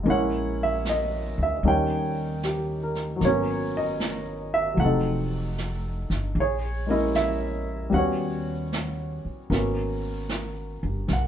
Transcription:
0.03 upright bass A#1, grand piano G#3 A#3 C#4, brush sweep
0.09 grand piano E4 C#5 F#5
0.63 grand piano E5
0.85 snare, hi-hat pedal
0.89 grand piano D#5
1.38 upright bass D2
1.43 grand piano E5
1.63 upright bass D#2, grand piano G3 A#3 C#4 D#4, brush sweep
1.68 grand piano C#5 G5
2.43 grand piano G4, snare, hi-hat pedal
2.83 grand piano A#4
2.95 snare
3.16 grand piano F#3
3.20 upright bass G#1, grand piano A#3 B3, brush sweep, snare
3.25 grand piano C#4 F#4 C#5
3.77 grand piano D#5
4.00 snare, hi-hat pedal
4.54 grand piano E5
4.74 upright bass F1, grand piano F#3 A3
4.79 grand piano C4 F#5, brush sweep
4.85 grand piano D#4 A4
5.58 snare, hi-hat pedal
6.10 upright bass G1, snare
6.35 upright bass A#1, brush sweep
6.40 grand piano G#4 C#5
6.86 grand piano G#3 A#3 C#4
6.91 grand piano E4 D#5
7.15 grand piano E5, snare, hi-hat pedal
7.90 upright bass D#2, grand piano G3 B3 C#4
7.94 grand piano F#4 F#5, brush sweep
7.98 grand piano C#5
8.73 snare, hi-hat pedal
9.25 muted upright bass stroke
9.50 upright bass G#1, grand piano A#3 B3 C#4 F#4, brush sweep, snare
10.29 snare, hi-hat pedal
10.83 upright bass G1
11.08 upright bass B1, brush sweep, snare
11.13 grand piano F#5

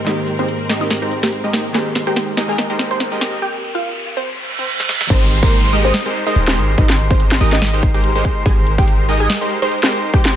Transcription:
Already playing: string section G#2 A#3 C4 A#4, synth keys D#3 G#3 A#3 C4 G4, riser
0.04 synth keys D#3 G#3 A#3 C4 G4, supersaw synth G#3 D#4 G4 A#4 C5, synth pluck D#4 D#5, snare, closed hi-hat
0.28 closed hi-hat
0.39 supersaw synth G#3 D#4 G4 A#4 C5, synth pluck C4 C5, closed hi-hat
0.49 closed hi-hat
0.69 supersaw synth G#3 D#4 G4 A#4 D#5, snare, open hi-hat
0.79 synth keys D#3 G#3 A#3 C4 G4, synth pluck D#4 D#5
0.90 snare, closed hi-hat
1.02 supersaw synth G#3 D#4 G4 A#4 C5
1.11 closed hi-hat
1.23 synth pluck G4 G5, snare, closed hi-hat
1.32 closed hi-hat
1.44 supersaw synth G#3 D#4 G4 A#4 D#5
1.53 snare, closed hi-hat
1.72 synth keys D#3 G#3 A#3 C4 G4, supersaw synth G#3 D#4 G4 A#4 C5, synth pluck G#4 G#5, snare, closed hi-hat
1.95 snare, closed hi-hat
2.07 supersaw synth G#3 D#4 G4 A#4 C5, synth pluck G4 G5, closed hi-hat
2.16 snare, closed hi-hat
2.37 supersaw synth G#3 D#4 G4 A#4 D#5, snare, open hi-hat
2.47 synth keys D#3 G#3 A#3 C4 A#4, synth pluck G#4 G#5
2.58 snare, closed hi-hat
2.70 supersaw synth G#3 D#4 G4 A#4 C5
2.79 snare, closed hi-hat
2.91 synth pluck C5 C6, closed hi-hat
3.00 snare, closed hi-hat
3.12 supersaw synth G#3 D#4 G4 A#4 D#5
3.21 snare, closed hi-hat
3.42 synth pluck G4 G5
3.75 synth pluck F4 F5
4.17 synth pluck C4 C5
4.26 reverse cymbal
4.59 synth pluck C4 C5
4.80 snare
4.89 snare
5.01 snare
5.10 808-style bass G#1, supersaw synth G#3 D#4 G4 A#4 C5, synth pluck C4 C5, digital synth lead C6, kick, closed hi-hat, crash, downlifter
5.31 closed hi-hat
5.43 supersaw synth G#3 D#4 G4 A#4 C5, synth pluck A#3 A#4, digital synth lead C6, kick, closed hi-hat
5.52 closed hi-hat
5.73 supersaw synth G#3 D#4 G4 A#4 D#5, digital synth lead D#6, open hi-hat
5.85 synth pluck C4 C5
5.94 snare, closed hi-hat
6.06 supersaw synth G#3 D#4 G4 A#4 C5, digital synth lead C6
6.15 closed hi-hat
6.27 supersaw synth G#3 D#4 G4 A#4 C5, synth pluck D#4 D#5, digital synth lead C6, closed hi-hat
6.36 808-style bass D#1, closed hi-hat
6.48 supersaw synth G#3 D#4 G4 A#4 C5, digital synth lead C6, snare
6.57 808-style bass G#1, closed hi-hat
6.78 808-style bass G#1, supersaw synth G#3 D#4 G4 A#4 C5, synth pluck D#4 D#5, digital synth lead C6, kick, closed hi-hat
6.90 snare
6.99 closed hi-hat
7.10 supersaw synth G#3 D#4 G4 A#4 C5, synth pluck C4 C5, digital synth lead C6, kick, closed hi-hat
7.20 closed hi-hat
7.31 snare
7.41 808-style bass G#1, supersaw synth G#3 D#4 G4 A#4 D#5, digital synth lead D#6, open hi-hat
7.52 synth pluck D#4 D#5, snare
7.62 snare, closed hi-hat
7.73 supersaw synth G#3 D#4 G4 A#4 C5, digital synth lead C6
7.83 kick, closed hi-hat
7.94 supersaw synth G#3 D#4 G4 A#4 C5, synth pluck G4 G5, digital synth lead C6, closed hi-hat
8.04 closed hi-hat
8.15 supersaw synth G#3 D#4 G4 A#4 C5, digital synth lead C6
8.25 kick, closed hi-hat
8.46 808-style bass G#1, supersaw synth G#3 D#4 G4 A#4 C5, synth pluck G#4 G#5, kick, closed hi-hat
8.67 closed hi-hat
8.78 supersaw synth G#3 D#4 G4 A#4 C5, synth pluck G4 G5, digital synth lead C6, kick, closed hi-hat
8.88 closed hi-hat
9.09 supersaw synth G#3 D#4 G4 A#4 D#5, digital synth lead D#6, open hi-hat
9.20 synth pluck G#4 G#5
9.30 snare, closed hi-hat
9.41 supersaw synth G#3 D#4 G4 A#4 C5, digital synth lead C6
9.51 closed hi-hat
9.62 supersaw synth G#3 D#4 G4 A#4 C5, synth pluck C5 C6, digital synth lead C6, closed hi-hat
9.72 closed hi-hat
9.83 supersaw synth G#3 D#4 G4 A#4 C5, digital synth lead C6, snare
9.93 closed hi-hat
10.14 supersaw synth G#3 D#4 G4 A#4 C5, synth pluck G4 G5, kick, closed hi-hat
10.25 snare

